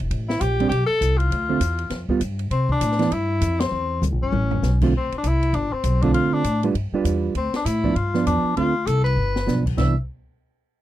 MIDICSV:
0, 0, Header, 1, 6, 480
1, 0, Start_track
1, 0, Key_signature, 0, "major"
1, 0, Tempo, 302267
1, 165, Time_signature, 4, 2, 24, 8
1, 17179, End_track
2, 0, Start_track
2, 0, Title_t, "Tenor saxophone"
2, 0, Program_c, 0, 66
2, 459, Note_on_c, 0, 64, 90
2, 645, Note_on_c, 0, 67, 105
2, 669, Note_off_c, 0, 64, 0
2, 1087, Note_off_c, 0, 67, 0
2, 1096, Note_on_c, 0, 67, 91
2, 1360, Note_off_c, 0, 67, 0
2, 1370, Note_on_c, 0, 69, 108
2, 1864, Note_on_c, 0, 65, 88
2, 1888, Note_off_c, 0, 69, 0
2, 3311, Note_off_c, 0, 65, 0
2, 3994, Note_on_c, 0, 60, 86
2, 4288, Note_off_c, 0, 60, 0
2, 4317, Note_on_c, 0, 62, 96
2, 4964, Note_on_c, 0, 64, 98
2, 4988, Note_off_c, 0, 62, 0
2, 5725, Note_on_c, 0, 60, 90
2, 5749, Note_off_c, 0, 64, 0
2, 6386, Note_off_c, 0, 60, 0
2, 6711, Note_on_c, 0, 61, 82
2, 7587, Note_off_c, 0, 61, 0
2, 7891, Note_on_c, 0, 60, 83
2, 8155, Note_off_c, 0, 60, 0
2, 8225, Note_on_c, 0, 62, 71
2, 8377, Note_on_c, 0, 64, 92
2, 8401, Note_off_c, 0, 62, 0
2, 8807, Note_on_c, 0, 62, 79
2, 8830, Note_off_c, 0, 64, 0
2, 9098, Note_on_c, 0, 60, 83
2, 9122, Note_off_c, 0, 62, 0
2, 9572, Note_on_c, 0, 62, 78
2, 9596, Note_off_c, 0, 60, 0
2, 9743, Note_off_c, 0, 62, 0
2, 9752, Note_on_c, 0, 65, 98
2, 10052, Note_on_c, 0, 62, 89
2, 10076, Note_off_c, 0, 65, 0
2, 10522, Note_off_c, 0, 62, 0
2, 11702, Note_on_c, 0, 60, 79
2, 11982, Note_off_c, 0, 60, 0
2, 12007, Note_on_c, 0, 62, 73
2, 12150, Note_on_c, 0, 64, 84
2, 12174, Note_off_c, 0, 62, 0
2, 12629, Note_on_c, 0, 65, 83
2, 12653, Note_off_c, 0, 64, 0
2, 13108, Note_off_c, 0, 65, 0
2, 13128, Note_on_c, 0, 62, 88
2, 13565, Note_off_c, 0, 62, 0
2, 13601, Note_on_c, 0, 65, 98
2, 14076, Note_on_c, 0, 69, 93
2, 14100, Note_off_c, 0, 65, 0
2, 14347, Note_off_c, 0, 69, 0
2, 14356, Note_on_c, 0, 71, 94
2, 15259, Note_off_c, 0, 71, 0
2, 15527, Note_on_c, 0, 76, 73
2, 15794, Note_off_c, 0, 76, 0
2, 17179, End_track
3, 0, Start_track
3, 0, Title_t, "Hollow-body jazz guitar"
3, 0, Program_c, 1, 26
3, 952, Note_on_c, 1, 55, 63
3, 962, Note_on_c, 1, 60, 69
3, 971, Note_on_c, 1, 62, 64
3, 1111, Note_off_c, 1, 55, 0
3, 1116, Note_off_c, 1, 60, 0
3, 1120, Note_off_c, 1, 62, 0
3, 2367, Note_on_c, 1, 50, 57
3, 2374, Note_on_c, 1, 57, 72
3, 2383, Note_on_c, 1, 60, 67
3, 2388, Note_on_c, 1, 65, 65
3, 2535, Note_off_c, 1, 50, 0
3, 2538, Note_off_c, 1, 57, 0
3, 2543, Note_off_c, 1, 60, 0
3, 2546, Note_off_c, 1, 65, 0
3, 3327, Note_on_c, 1, 55, 65
3, 3332, Note_on_c, 1, 59, 72
3, 3348, Note_on_c, 1, 65, 77
3, 3493, Note_off_c, 1, 55, 0
3, 3496, Note_off_c, 1, 59, 0
3, 3504, Note_off_c, 1, 65, 0
3, 4748, Note_on_c, 1, 52, 74
3, 4752, Note_on_c, 1, 59, 72
3, 4766, Note_on_c, 1, 62, 74
3, 4921, Note_off_c, 1, 52, 0
3, 4923, Note_off_c, 1, 59, 0
3, 4931, Note_off_c, 1, 62, 0
3, 7659, Note_on_c, 1, 50, 75
3, 7663, Note_on_c, 1, 57, 79
3, 7674, Note_on_c, 1, 60, 89
3, 7680, Note_on_c, 1, 65, 80
3, 7814, Note_off_c, 1, 50, 0
3, 7816, Note_off_c, 1, 57, 0
3, 7822, Note_off_c, 1, 60, 0
3, 7825, Note_off_c, 1, 65, 0
3, 9578, Note_on_c, 1, 50, 74
3, 9585, Note_on_c, 1, 57, 71
3, 9589, Note_on_c, 1, 60, 80
3, 9594, Note_on_c, 1, 65, 82
3, 10195, Note_off_c, 1, 50, 0
3, 10199, Note_off_c, 1, 57, 0
3, 10201, Note_off_c, 1, 60, 0
3, 10203, Note_off_c, 1, 65, 0
3, 10540, Note_on_c, 1, 55, 73
3, 10548, Note_on_c, 1, 65, 73
3, 10550, Note_on_c, 1, 62, 73
3, 10555, Note_on_c, 1, 71, 76
3, 10695, Note_off_c, 1, 55, 0
3, 10699, Note_off_c, 1, 65, 0
3, 10700, Note_off_c, 1, 62, 0
3, 10703, Note_off_c, 1, 71, 0
3, 11016, Note_on_c, 1, 55, 66
3, 11026, Note_on_c, 1, 62, 68
3, 11033, Note_on_c, 1, 65, 72
3, 11042, Note_on_c, 1, 71, 71
3, 11636, Note_off_c, 1, 55, 0
3, 11641, Note_off_c, 1, 62, 0
3, 11644, Note_off_c, 1, 65, 0
3, 11649, Note_off_c, 1, 71, 0
3, 12445, Note_on_c, 1, 53, 66
3, 12456, Note_on_c, 1, 59, 60
3, 12460, Note_on_c, 1, 62, 76
3, 12610, Note_off_c, 1, 53, 0
3, 12615, Note_off_c, 1, 59, 0
3, 12617, Note_off_c, 1, 62, 0
3, 12928, Note_on_c, 1, 53, 62
3, 12941, Note_on_c, 1, 59, 66
3, 12949, Note_on_c, 1, 62, 68
3, 13555, Note_off_c, 1, 53, 0
3, 13561, Note_off_c, 1, 59, 0
3, 13565, Note_off_c, 1, 62, 0
3, 13608, Note_on_c, 1, 50, 49
3, 13615, Note_on_c, 1, 57, 50
3, 13616, Note_on_c, 1, 60, 57
3, 13624, Note_on_c, 1, 65, 58
3, 13861, Note_off_c, 1, 50, 0
3, 13865, Note_off_c, 1, 57, 0
3, 13865, Note_off_c, 1, 60, 0
3, 13870, Note_off_c, 1, 65, 0
3, 15031, Note_on_c, 1, 53, 48
3, 15045, Note_on_c, 1, 59, 55
3, 15049, Note_on_c, 1, 62, 56
3, 15295, Note_off_c, 1, 53, 0
3, 15303, Note_off_c, 1, 59, 0
3, 15305, Note_off_c, 1, 62, 0
3, 15517, Note_on_c, 1, 52, 59
3, 15519, Note_on_c, 1, 59, 61
3, 15529, Note_on_c, 1, 62, 67
3, 15780, Note_off_c, 1, 52, 0
3, 15781, Note_off_c, 1, 59, 0
3, 15786, Note_off_c, 1, 62, 0
3, 17179, End_track
4, 0, Start_track
4, 0, Title_t, "Upright bass"
4, 0, Program_c, 2, 32
4, 18, Note_on_c, 2, 28, 60
4, 160, Note_off_c, 2, 28, 0
4, 167, Note_on_c, 2, 33, 83
4, 629, Note_off_c, 2, 33, 0
4, 648, Note_on_c, 2, 34, 93
4, 1108, Note_off_c, 2, 34, 0
4, 1125, Note_on_c, 2, 35, 86
4, 1393, Note_off_c, 2, 35, 0
4, 1604, Note_on_c, 2, 36, 92
4, 2065, Note_off_c, 2, 36, 0
4, 2075, Note_on_c, 2, 38, 84
4, 2533, Note_off_c, 2, 38, 0
4, 2543, Note_on_c, 2, 40, 92
4, 3006, Note_off_c, 2, 40, 0
4, 3015, Note_on_c, 2, 41, 81
4, 3294, Note_off_c, 2, 41, 0
4, 3496, Note_on_c, 2, 43, 91
4, 3967, Note_off_c, 2, 43, 0
4, 3977, Note_on_c, 2, 48, 83
4, 4447, Note_off_c, 2, 48, 0
4, 4464, Note_on_c, 2, 45, 91
4, 4929, Note_off_c, 2, 45, 0
4, 4939, Note_on_c, 2, 43, 87
4, 5406, Note_off_c, 2, 43, 0
4, 5418, Note_on_c, 2, 41, 95
4, 5885, Note_off_c, 2, 41, 0
4, 5899, Note_on_c, 2, 40, 89
4, 6365, Note_off_c, 2, 40, 0
4, 6379, Note_on_c, 2, 38, 101
4, 6541, Note_off_c, 2, 38, 0
4, 6541, Note_on_c, 2, 34, 57
4, 6695, Note_off_c, 2, 34, 0
4, 6705, Note_on_c, 2, 31, 67
4, 6851, Note_off_c, 2, 31, 0
4, 6860, Note_on_c, 2, 33, 90
4, 7325, Note_off_c, 2, 33, 0
4, 7344, Note_on_c, 2, 35, 92
4, 7807, Note_off_c, 2, 35, 0
4, 7832, Note_on_c, 2, 38, 80
4, 8098, Note_off_c, 2, 38, 0
4, 8313, Note_on_c, 2, 36, 88
4, 8771, Note_off_c, 2, 36, 0
4, 8783, Note_on_c, 2, 31, 88
4, 9053, Note_off_c, 2, 31, 0
4, 9268, Note_on_c, 2, 35, 87
4, 9729, Note_off_c, 2, 35, 0
4, 9747, Note_on_c, 2, 38, 79
4, 10016, Note_off_c, 2, 38, 0
4, 10233, Note_on_c, 2, 45, 90
4, 10693, Note_off_c, 2, 45, 0
4, 10712, Note_on_c, 2, 43, 76
4, 10979, Note_off_c, 2, 43, 0
4, 11184, Note_on_c, 2, 40, 88
4, 11649, Note_off_c, 2, 40, 0
4, 11665, Note_on_c, 2, 38, 82
4, 11936, Note_off_c, 2, 38, 0
4, 12149, Note_on_c, 2, 45, 86
4, 12613, Note_off_c, 2, 45, 0
4, 12632, Note_on_c, 2, 43, 82
4, 13095, Note_off_c, 2, 43, 0
4, 13120, Note_on_c, 2, 40, 82
4, 13382, Note_off_c, 2, 40, 0
4, 13600, Note_on_c, 2, 38, 80
4, 14061, Note_off_c, 2, 38, 0
4, 14082, Note_on_c, 2, 36, 84
4, 14534, Note_off_c, 2, 36, 0
4, 14544, Note_on_c, 2, 31, 76
4, 15014, Note_off_c, 2, 31, 0
4, 15038, Note_on_c, 2, 35, 79
4, 15503, Note_off_c, 2, 35, 0
4, 15525, Note_on_c, 2, 36, 89
4, 15793, Note_off_c, 2, 36, 0
4, 17179, End_track
5, 0, Start_track
5, 0, Title_t, "Muted upright bass strokes"
5, 1417, Note_on_c, 9, 29, 43
5, 1576, Note_off_c, 9, 29, 0
5, 3313, Note_on_c, 9, 29, 45
5, 3472, Note_off_c, 9, 29, 0
5, 8132, Note_on_c, 9, 29, 44
5, 8291, Note_off_c, 9, 29, 0
5, 9087, Note_on_c, 9, 29, 38
5, 9246, Note_off_c, 9, 29, 0
5, 10024, Note_on_c, 9, 29, 39
5, 10183, Note_off_c, 9, 29, 0
5, 10992, Note_on_c, 9, 29, 41
5, 11151, Note_off_c, 9, 29, 0
5, 11952, Note_on_c, 9, 29, 41
5, 12111, Note_off_c, 9, 29, 0
5, 13392, Note_on_c, 9, 29, 33
5, 13551, Note_off_c, 9, 29, 0
5, 17179, End_track
6, 0, Start_track
6, 0, Title_t, "Drums"
6, 169, Note_on_c, 9, 36, 27
6, 172, Note_on_c, 9, 51, 60
6, 328, Note_off_c, 9, 36, 0
6, 331, Note_off_c, 9, 51, 0
6, 468, Note_on_c, 9, 38, 63
6, 626, Note_off_c, 9, 38, 0
6, 647, Note_on_c, 9, 44, 60
6, 647, Note_on_c, 9, 51, 75
6, 648, Note_on_c, 9, 36, 26
6, 806, Note_off_c, 9, 36, 0
6, 806, Note_off_c, 9, 44, 0
6, 806, Note_off_c, 9, 51, 0
6, 952, Note_on_c, 9, 51, 45
6, 1111, Note_off_c, 9, 51, 0
6, 1127, Note_on_c, 9, 36, 18
6, 1136, Note_on_c, 9, 51, 66
6, 1285, Note_off_c, 9, 36, 0
6, 1295, Note_off_c, 9, 51, 0
6, 1603, Note_on_c, 9, 36, 27
6, 1614, Note_on_c, 9, 44, 60
6, 1614, Note_on_c, 9, 51, 69
6, 1762, Note_off_c, 9, 36, 0
6, 1773, Note_off_c, 9, 44, 0
6, 1773, Note_off_c, 9, 51, 0
6, 1903, Note_on_c, 9, 51, 44
6, 2062, Note_off_c, 9, 51, 0
6, 2079, Note_on_c, 9, 36, 20
6, 2095, Note_on_c, 9, 51, 59
6, 2238, Note_off_c, 9, 36, 0
6, 2254, Note_off_c, 9, 51, 0
6, 2551, Note_on_c, 9, 36, 25
6, 2551, Note_on_c, 9, 44, 57
6, 2551, Note_on_c, 9, 51, 77
6, 2710, Note_off_c, 9, 36, 0
6, 2710, Note_off_c, 9, 44, 0
6, 2710, Note_off_c, 9, 51, 0
6, 2834, Note_on_c, 9, 51, 44
6, 2993, Note_off_c, 9, 51, 0
6, 3019, Note_on_c, 9, 38, 42
6, 3022, Note_on_c, 9, 51, 59
6, 3024, Note_on_c, 9, 36, 21
6, 3177, Note_off_c, 9, 38, 0
6, 3181, Note_off_c, 9, 51, 0
6, 3183, Note_off_c, 9, 36, 0
6, 3315, Note_on_c, 9, 36, 61
6, 3474, Note_off_c, 9, 36, 0
6, 3502, Note_on_c, 9, 36, 21
6, 3504, Note_on_c, 9, 44, 54
6, 3504, Note_on_c, 9, 51, 76
6, 3660, Note_off_c, 9, 36, 0
6, 3663, Note_off_c, 9, 44, 0
6, 3663, Note_off_c, 9, 51, 0
6, 3795, Note_on_c, 9, 51, 49
6, 3954, Note_off_c, 9, 51, 0
6, 3980, Note_on_c, 9, 36, 24
6, 3985, Note_on_c, 9, 51, 55
6, 4139, Note_off_c, 9, 36, 0
6, 4144, Note_off_c, 9, 51, 0
6, 4272, Note_on_c, 9, 36, 58
6, 4431, Note_off_c, 9, 36, 0
6, 4460, Note_on_c, 9, 36, 27
6, 4461, Note_on_c, 9, 44, 63
6, 4461, Note_on_c, 9, 51, 79
6, 4619, Note_off_c, 9, 36, 0
6, 4620, Note_off_c, 9, 44, 0
6, 4620, Note_off_c, 9, 51, 0
6, 4625, Note_on_c, 9, 38, 28
6, 4748, Note_on_c, 9, 51, 50
6, 4780, Note_off_c, 9, 38, 0
6, 4780, Note_on_c, 9, 38, 46
6, 4907, Note_off_c, 9, 51, 0
6, 4939, Note_off_c, 9, 38, 0
6, 4941, Note_on_c, 9, 36, 27
6, 4948, Note_on_c, 9, 51, 64
6, 5100, Note_off_c, 9, 36, 0
6, 5107, Note_off_c, 9, 51, 0
6, 5420, Note_on_c, 9, 36, 20
6, 5423, Note_on_c, 9, 44, 63
6, 5423, Note_on_c, 9, 51, 71
6, 5579, Note_off_c, 9, 36, 0
6, 5581, Note_off_c, 9, 44, 0
6, 5581, Note_off_c, 9, 51, 0
6, 5719, Note_on_c, 9, 38, 83
6, 5722, Note_on_c, 9, 51, 62
6, 5878, Note_off_c, 9, 38, 0
6, 5881, Note_off_c, 9, 51, 0
6, 6388, Note_on_c, 9, 48, 53
6, 6391, Note_on_c, 9, 44, 60
6, 6547, Note_off_c, 9, 48, 0
6, 6550, Note_off_c, 9, 44, 0
6, 6866, Note_on_c, 9, 48, 80
6, 7025, Note_off_c, 9, 48, 0
6, 7159, Note_on_c, 9, 43, 80
6, 7318, Note_off_c, 9, 43, 0
6, 7351, Note_on_c, 9, 38, 58
6, 7355, Note_on_c, 9, 44, 54
6, 7510, Note_off_c, 9, 38, 0
6, 7513, Note_off_c, 9, 44, 0
6, 7645, Note_on_c, 9, 49, 71
6, 7646, Note_on_c, 9, 36, 68
6, 7804, Note_off_c, 9, 49, 0
6, 7805, Note_off_c, 9, 36, 0
6, 8135, Note_on_c, 9, 51, 42
6, 8293, Note_off_c, 9, 51, 0
6, 8315, Note_on_c, 9, 36, 24
6, 8316, Note_on_c, 9, 44, 55
6, 8316, Note_on_c, 9, 51, 68
6, 8473, Note_off_c, 9, 36, 0
6, 8475, Note_off_c, 9, 44, 0
6, 8475, Note_off_c, 9, 51, 0
6, 8616, Note_on_c, 9, 51, 42
6, 8774, Note_off_c, 9, 51, 0
6, 8791, Note_on_c, 9, 36, 22
6, 8792, Note_on_c, 9, 51, 56
6, 8950, Note_off_c, 9, 36, 0
6, 8950, Note_off_c, 9, 51, 0
6, 9267, Note_on_c, 9, 44, 54
6, 9267, Note_on_c, 9, 51, 71
6, 9270, Note_on_c, 9, 36, 23
6, 9426, Note_off_c, 9, 44, 0
6, 9426, Note_off_c, 9, 51, 0
6, 9429, Note_off_c, 9, 36, 0
6, 9564, Note_on_c, 9, 36, 55
6, 9565, Note_on_c, 9, 51, 41
6, 9723, Note_off_c, 9, 36, 0
6, 9724, Note_off_c, 9, 51, 0
6, 9750, Note_on_c, 9, 36, 18
6, 9753, Note_on_c, 9, 51, 57
6, 9909, Note_off_c, 9, 36, 0
6, 9912, Note_off_c, 9, 51, 0
6, 10231, Note_on_c, 9, 36, 23
6, 10232, Note_on_c, 9, 44, 59
6, 10232, Note_on_c, 9, 51, 70
6, 10390, Note_off_c, 9, 36, 0
6, 10391, Note_off_c, 9, 44, 0
6, 10391, Note_off_c, 9, 51, 0
6, 10529, Note_on_c, 9, 51, 43
6, 10688, Note_off_c, 9, 51, 0
6, 10714, Note_on_c, 9, 36, 21
6, 10720, Note_on_c, 9, 51, 57
6, 10873, Note_off_c, 9, 36, 0
6, 10879, Note_off_c, 9, 51, 0
6, 11192, Note_on_c, 9, 36, 21
6, 11197, Note_on_c, 9, 44, 61
6, 11197, Note_on_c, 9, 51, 65
6, 11351, Note_off_c, 9, 36, 0
6, 11355, Note_off_c, 9, 44, 0
6, 11355, Note_off_c, 9, 51, 0
6, 11670, Note_on_c, 9, 36, 25
6, 11670, Note_on_c, 9, 51, 57
6, 11829, Note_off_c, 9, 36, 0
6, 11829, Note_off_c, 9, 51, 0
6, 11966, Note_on_c, 9, 38, 50
6, 11969, Note_on_c, 9, 51, 41
6, 12125, Note_off_c, 9, 38, 0
6, 12128, Note_off_c, 9, 51, 0
6, 12152, Note_on_c, 9, 36, 22
6, 12165, Note_on_c, 9, 44, 63
6, 12165, Note_on_c, 9, 51, 74
6, 12311, Note_off_c, 9, 36, 0
6, 12323, Note_off_c, 9, 44, 0
6, 12323, Note_off_c, 9, 51, 0
6, 12445, Note_on_c, 9, 36, 50
6, 12603, Note_off_c, 9, 36, 0
6, 12633, Note_on_c, 9, 36, 26
6, 12640, Note_on_c, 9, 51, 56
6, 12791, Note_off_c, 9, 36, 0
6, 12799, Note_off_c, 9, 51, 0
6, 12927, Note_on_c, 9, 38, 35
6, 13086, Note_off_c, 9, 38, 0
6, 13116, Note_on_c, 9, 36, 19
6, 13127, Note_on_c, 9, 44, 52
6, 13127, Note_on_c, 9, 51, 66
6, 13275, Note_off_c, 9, 36, 0
6, 13286, Note_off_c, 9, 44, 0
6, 13286, Note_off_c, 9, 51, 0
6, 13596, Note_on_c, 9, 36, 16
6, 13606, Note_on_c, 9, 51, 48
6, 13755, Note_off_c, 9, 36, 0
6, 13765, Note_off_c, 9, 51, 0
6, 14080, Note_on_c, 9, 36, 19
6, 14089, Note_on_c, 9, 44, 55
6, 14089, Note_on_c, 9, 51, 71
6, 14238, Note_off_c, 9, 36, 0
6, 14248, Note_off_c, 9, 44, 0
6, 14248, Note_off_c, 9, 51, 0
6, 14386, Note_on_c, 9, 51, 41
6, 14545, Note_off_c, 9, 51, 0
6, 14860, Note_on_c, 9, 38, 58
6, 15019, Note_off_c, 9, 38, 0
6, 15051, Note_on_c, 9, 38, 50
6, 15054, Note_on_c, 9, 44, 48
6, 15209, Note_off_c, 9, 38, 0
6, 15213, Note_off_c, 9, 44, 0
6, 15340, Note_on_c, 9, 36, 62
6, 15353, Note_on_c, 9, 49, 59
6, 15499, Note_off_c, 9, 36, 0
6, 15512, Note_off_c, 9, 49, 0
6, 15529, Note_on_c, 9, 36, 85
6, 15530, Note_on_c, 9, 38, 69
6, 15530, Note_on_c, 9, 49, 76
6, 15688, Note_off_c, 9, 36, 0
6, 15689, Note_off_c, 9, 38, 0
6, 15689, Note_off_c, 9, 49, 0
6, 17179, End_track
0, 0, End_of_file